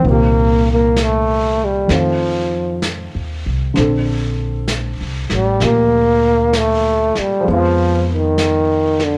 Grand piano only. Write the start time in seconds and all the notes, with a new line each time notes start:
0.00 A#2 D#3
0.07 C4
0.11 G4
1.87 D#3 A3 C4
1.92 F4
3.74 D3 C4 D4
3.79 A4
5.60 A#2 G4
7.41 F3 G#3
7.48 B3 F4